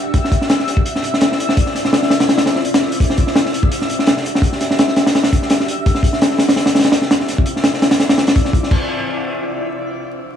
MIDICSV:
0, 0, Header, 1, 3, 480
1, 0, Start_track
1, 0, Tempo, 357143
1, 191, Time_signature, 4, 2, 24, 8
1, 13931, End_track
2, 0, Start_track
2, 0, Title_t, "Synth texture"
2, 0, Program_c, 0, 99
2, 0, Note_on_c, 0, 76, 84
2, 0, Note_on_c, 0, 88, 88
2, 11722, Note_off_c, 0, 76, 0
2, 11723, Note_off_c, 0, 88, 0
2, 13931, End_track
3, 0, Start_track
3, 0, Title_t, "Drums"
3, 184, Note_on_c, 9, 42, 89
3, 187, Note_on_c, 9, 36, 111
3, 319, Note_off_c, 9, 42, 0
3, 322, Note_off_c, 9, 36, 0
3, 330, Note_on_c, 9, 38, 47
3, 426, Note_on_c, 9, 36, 91
3, 430, Note_on_c, 9, 42, 67
3, 464, Note_off_c, 9, 38, 0
3, 558, Note_on_c, 9, 38, 46
3, 561, Note_off_c, 9, 36, 0
3, 564, Note_off_c, 9, 42, 0
3, 667, Note_on_c, 9, 42, 87
3, 671, Note_off_c, 9, 38, 0
3, 671, Note_on_c, 9, 38, 115
3, 800, Note_off_c, 9, 38, 0
3, 800, Note_on_c, 9, 38, 42
3, 802, Note_off_c, 9, 42, 0
3, 908, Note_off_c, 9, 38, 0
3, 908, Note_on_c, 9, 38, 34
3, 912, Note_on_c, 9, 42, 65
3, 1034, Note_on_c, 9, 36, 99
3, 1043, Note_off_c, 9, 38, 0
3, 1047, Note_off_c, 9, 42, 0
3, 1151, Note_on_c, 9, 42, 81
3, 1168, Note_off_c, 9, 36, 0
3, 1285, Note_on_c, 9, 38, 37
3, 1286, Note_off_c, 9, 42, 0
3, 1396, Note_on_c, 9, 42, 70
3, 1419, Note_off_c, 9, 38, 0
3, 1529, Note_on_c, 9, 38, 43
3, 1531, Note_off_c, 9, 42, 0
3, 1625, Note_on_c, 9, 42, 83
3, 1635, Note_off_c, 9, 38, 0
3, 1635, Note_on_c, 9, 38, 114
3, 1760, Note_off_c, 9, 42, 0
3, 1769, Note_off_c, 9, 38, 0
3, 1776, Note_on_c, 9, 38, 57
3, 1881, Note_on_c, 9, 42, 70
3, 1910, Note_off_c, 9, 38, 0
3, 2000, Note_on_c, 9, 38, 60
3, 2015, Note_off_c, 9, 42, 0
3, 2110, Note_on_c, 9, 42, 95
3, 2111, Note_on_c, 9, 36, 115
3, 2134, Note_off_c, 9, 38, 0
3, 2235, Note_on_c, 9, 38, 35
3, 2244, Note_off_c, 9, 42, 0
3, 2246, Note_off_c, 9, 36, 0
3, 2353, Note_off_c, 9, 38, 0
3, 2353, Note_on_c, 9, 38, 33
3, 2360, Note_on_c, 9, 42, 72
3, 2483, Note_off_c, 9, 38, 0
3, 2483, Note_on_c, 9, 38, 51
3, 2495, Note_off_c, 9, 42, 0
3, 2592, Note_off_c, 9, 38, 0
3, 2592, Note_on_c, 9, 38, 117
3, 2603, Note_on_c, 9, 42, 91
3, 2722, Note_off_c, 9, 38, 0
3, 2722, Note_on_c, 9, 38, 64
3, 2738, Note_off_c, 9, 42, 0
3, 2828, Note_off_c, 9, 38, 0
3, 2828, Note_on_c, 9, 38, 103
3, 2839, Note_on_c, 9, 42, 80
3, 2958, Note_off_c, 9, 42, 0
3, 2958, Note_on_c, 9, 42, 82
3, 2961, Note_off_c, 9, 38, 0
3, 2961, Note_on_c, 9, 38, 110
3, 3077, Note_off_c, 9, 38, 0
3, 3077, Note_on_c, 9, 38, 107
3, 3080, Note_off_c, 9, 42, 0
3, 3080, Note_on_c, 9, 42, 72
3, 3195, Note_off_c, 9, 38, 0
3, 3195, Note_on_c, 9, 38, 110
3, 3201, Note_off_c, 9, 42, 0
3, 3201, Note_on_c, 9, 42, 78
3, 3307, Note_off_c, 9, 38, 0
3, 3307, Note_on_c, 9, 38, 101
3, 3321, Note_off_c, 9, 42, 0
3, 3321, Note_on_c, 9, 42, 73
3, 3438, Note_off_c, 9, 38, 0
3, 3438, Note_on_c, 9, 38, 44
3, 3455, Note_off_c, 9, 42, 0
3, 3560, Note_on_c, 9, 42, 59
3, 3572, Note_off_c, 9, 38, 0
3, 3685, Note_off_c, 9, 42, 0
3, 3685, Note_on_c, 9, 42, 83
3, 3686, Note_on_c, 9, 38, 94
3, 3793, Note_off_c, 9, 38, 0
3, 3793, Note_on_c, 9, 38, 40
3, 3819, Note_off_c, 9, 42, 0
3, 3924, Note_on_c, 9, 42, 63
3, 3927, Note_off_c, 9, 38, 0
3, 4036, Note_on_c, 9, 36, 115
3, 4042, Note_off_c, 9, 42, 0
3, 4042, Note_on_c, 9, 42, 93
3, 4164, Note_on_c, 9, 38, 52
3, 4170, Note_off_c, 9, 36, 0
3, 4176, Note_off_c, 9, 42, 0
3, 4266, Note_on_c, 9, 42, 60
3, 4274, Note_on_c, 9, 36, 87
3, 4299, Note_off_c, 9, 38, 0
3, 4395, Note_on_c, 9, 38, 39
3, 4401, Note_off_c, 9, 42, 0
3, 4408, Note_off_c, 9, 36, 0
3, 4509, Note_off_c, 9, 38, 0
3, 4509, Note_on_c, 9, 38, 122
3, 4525, Note_on_c, 9, 42, 81
3, 4643, Note_off_c, 9, 38, 0
3, 4645, Note_on_c, 9, 38, 44
3, 4659, Note_off_c, 9, 42, 0
3, 4759, Note_on_c, 9, 42, 72
3, 4780, Note_off_c, 9, 38, 0
3, 4877, Note_on_c, 9, 36, 94
3, 4894, Note_off_c, 9, 42, 0
3, 4993, Note_on_c, 9, 42, 90
3, 5012, Note_off_c, 9, 36, 0
3, 5127, Note_on_c, 9, 38, 36
3, 5128, Note_off_c, 9, 42, 0
3, 5238, Note_on_c, 9, 42, 61
3, 5261, Note_off_c, 9, 38, 0
3, 5366, Note_on_c, 9, 38, 44
3, 5372, Note_off_c, 9, 42, 0
3, 5466, Note_on_c, 9, 42, 87
3, 5476, Note_off_c, 9, 38, 0
3, 5476, Note_on_c, 9, 38, 118
3, 5600, Note_off_c, 9, 42, 0
3, 5609, Note_off_c, 9, 38, 0
3, 5609, Note_on_c, 9, 38, 59
3, 5723, Note_on_c, 9, 42, 67
3, 5743, Note_off_c, 9, 38, 0
3, 5851, Note_on_c, 9, 38, 54
3, 5858, Note_off_c, 9, 42, 0
3, 5940, Note_on_c, 9, 36, 101
3, 5957, Note_on_c, 9, 42, 84
3, 5986, Note_off_c, 9, 38, 0
3, 6074, Note_off_c, 9, 36, 0
3, 6079, Note_on_c, 9, 38, 36
3, 6091, Note_off_c, 9, 42, 0
3, 6191, Note_on_c, 9, 42, 73
3, 6196, Note_off_c, 9, 38, 0
3, 6196, Note_on_c, 9, 38, 37
3, 6325, Note_off_c, 9, 38, 0
3, 6325, Note_off_c, 9, 42, 0
3, 6325, Note_on_c, 9, 38, 49
3, 6432, Note_on_c, 9, 42, 94
3, 6441, Note_off_c, 9, 38, 0
3, 6441, Note_on_c, 9, 38, 127
3, 6557, Note_off_c, 9, 38, 0
3, 6557, Note_on_c, 9, 38, 61
3, 6567, Note_off_c, 9, 42, 0
3, 6670, Note_on_c, 9, 42, 75
3, 6673, Note_off_c, 9, 38, 0
3, 6673, Note_on_c, 9, 38, 98
3, 6804, Note_off_c, 9, 42, 0
3, 6807, Note_off_c, 9, 38, 0
3, 6807, Note_on_c, 9, 38, 104
3, 6816, Note_on_c, 9, 42, 83
3, 6917, Note_off_c, 9, 42, 0
3, 6917, Note_on_c, 9, 42, 72
3, 6922, Note_off_c, 9, 38, 0
3, 6922, Note_on_c, 9, 38, 102
3, 7036, Note_off_c, 9, 38, 0
3, 7036, Note_on_c, 9, 38, 99
3, 7044, Note_off_c, 9, 42, 0
3, 7044, Note_on_c, 9, 42, 74
3, 7158, Note_on_c, 9, 36, 86
3, 7159, Note_off_c, 9, 42, 0
3, 7159, Note_on_c, 9, 42, 62
3, 7170, Note_off_c, 9, 38, 0
3, 7287, Note_on_c, 9, 38, 38
3, 7292, Note_off_c, 9, 36, 0
3, 7293, Note_off_c, 9, 42, 0
3, 7390, Note_on_c, 9, 42, 86
3, 7399, Note_off_c, 9, 38, 0
3, 7399, Note_on_c, 9, 38, 97
3, 7524, Note_off_c, 9, 42, 0
3, 7529, Note_off_c, 9, 38, 0
3, 7529, Note_on_c, 9, 38, 45
3, 7638, Note_on_c, 9, 42, 72
3, 7663, Note_off_c, 9, 38, 0
3, 7773, Note_off_c, 9, 42, 0
3, 7877, Note_on_c, 9, 42, 84
3, 7879, Note_on_c, 9, 36, 109
3, 7994, Note_on_c, 9, 38, 49
3, 8011, Note_off_c, 9, 42, 0
3, 8014, Note_off_c, 9, 36, 0
3, 8103, Note_on_c, 9, 36, 103
3, 8115, Note_on_c, 9, 42, 75
3, 8128, Note_off_c, 9, 38, 0
3, 8238, Note_off_c, 9, 36, 0
3, 8239, Note_on_c, 9, 38, 44
3, 8250, Note_off_c, 9, 42, 0
3, 8354, Note_on_c, 9, 42, 86
3, 8360, Note_off_c, 9, 38, 0
3, 8360, Note_on_c, 9, 38, 116
3, 8475, Note_off_c, 9, 38, 0
3, 8475, Note_on_c, 9, 38, 44
3, 8488, Note_off_c, 9, 42, 0
3, 8582, Note_off_c, 9, 38, 0
3, 8582, Note_on_c, 9, 38, 101
3, 8594, Note_on_c, 9, 42, 74
3, 8716, Note_off_c, 9, 38, 0
3, 8718, Note_on_c, 9, 38, 112
3, 8726, Note_off_c, 9, 42, 0
3, 8726, Note_on_c, 9, 42, 84
3, 8821, Note_off_c, 9, 38, 0
3, 8821, Note_on_c, 9, 38, 102
3, 8829, Note_off_c, 9, 42, 0
3, 8829, Note_on_c, 9, 42, 78
3, 8948, Note_off_c, 9, 38, 0
3, 8948, Note_on_c, 9, 38, 101
3, 8963, Note_off_c, 9, 42, 0
3, 8964, Note_on_c, 9, 42, 88
3, 9073, Note_off_c, 9, 38, 0
3, 9073, Note_on_c, 9, 38, 92
3, 9077, Note_off_c, 9, 42, 0
3, 9077, Note_on_c, 9, 42, 63
3, 9130, Note_off_c, 9, 38, 0
3, 9130, Note_on_c, 9, 38, 85
3, 9133, Note_off_c, 9, 42, 0
3, 9133, Note_on_c, 9, 42, 70
3, 9188, Note_off_c, 9, 42, 0
3, 9188, Note_on_c, 9, 42, 75
3, 9199, Note_off_c, 9, 38, 0
3, 9199, Note_on_c, 9, 38, 117
3, 9299, Note_off_c, 9, 38, 0
3, 9299, Note_on_c, 9, 38, 125
3, 9307, Note_off_c, 9, 42, 0
3, 9307, Note_on_c, 9, 42, 88
3, 9428, Note_off_c, 9, 38, 0
3, 9428, Note_on_c, 9, 38, 63
3, 9441, Note_off_c, 9, 42, 0
3, 9553, Note_off_c, 9, 38, 0
3, 9553, Note_on_c, 9, 38, 111
3, 9554, Note_on_c, 9, 42, 86
3, 9678, Note_off_c, 9, 38, 0
3, 9678, Note_on_c, 9, 38, 42
3, 9688, Note_off_c, 9, 42, 0
3, 9789, Note_on_c, 9, 42, 66
3, 9797, Note_off_c, 9, 38, 0
3, 9797, Note_on_c, 9, 38, 35
3, 9923, Note_off_c, 9, 42, 0
3, 9924, Note_on_c, 9, 36, 80
3, 9931, Note_off_c, 9, 38, 0
3, 10023, Note_on_c, 9, 42, 85
3, 10058, Note_off_c, 9, 36, 0
3, 10157, Note_off_c, 9, 42, 0
3, 10165, Note_on_c, 9, 38, 31
3, 10265, Note_off_c, 9, 38, 0
3, 10265, Note_on_c, 9, 38, 116
3, 10268, Note_on_c, 9, 42, 84
3, 10397, Note_off_c, 9, 38, 0
3, 10397, Note_on_c, 9, 38, 56
3, 10402, Note_off_c, 9, 42, 0
3, 10512, Note_on_c, 9, 42, 74
3, 10514, Note_off_c, 9, 38, 0
3, 10514, Note_on_c, 9, 38, 101
3, 10633, Note_off_c, 9, 38, 0
3, 10633, Note_on_c, 9, 38, 108
3, 10634, Note_off_c, 9, 42, 0
3, 10634, Note_on_c, 9, 42, 86
3, 10748, Note_off_c, 9, 38, 0
3, 10748, Note_on_c, 9, 38, 95
3, 10751, Note_off_c, 9, 42, 0
3, 10751, Note_on_c, 9, 42, 76
3, 10879, Note_off_c, 9, 38, 0
3, 10879, Note_on_c, 9, 38, 112
3, 10884, Note_off_c, 9, 42, 0
3, 10884, Note_on_c, 9, 42, 77
3, 10990, Note_off_c, 9, 42, 0
3, 10990, Note_on_c, 9, 42, 72
3, 10992, Note_off_c, 9, 38, 0
3, 10992, Note_on_c, 9, 38, 112
3, 11115, Note_off_c, 9, 42, 0
3, 11115, Note_on_c, 9, 42, 77
3, 11126, Note_off_c, 9, 38, 0
3, 11128, Note_on_c, 9, 38, 108
3, 11230, Note_off_c, 9, 42, 0
3, 11230, Note_on_c, 9, 42, 79
3, 11234, Note_on_c, 9, 36, 108
3, 11262, Note_off_c, 9, 38, 0
3, 11357, Note_on_c, 9, 38, 42
3, 11365, Note_off_c, 9, 42, 0
3, 11369, Note_off_c, 9, 36, 0
3, 11467, Note_on_c, 9, 36, 88
3, 11482, Note_on_c, 9, 42, 57
3, 11491, Note_off_c, 9, 38, 0
3, 11601, Note_on_c, 9, 38, 37
3, 11602, Note_off_c, 9, 36, 0
3, 11616, Note_off_c, 9, 42, 0
3, 11706, Note_on_c, 9, 49, 80
3, 11707, Note_on_c, 9, 36, 109
3, 11736, Note_off_c, 9, 38, 0
3, 11841, Note_off_c, 9, 49, 0
3, 11842, Note_off_c, 9, 36, 0
3, 13931, End_track
0, 0, End_of_file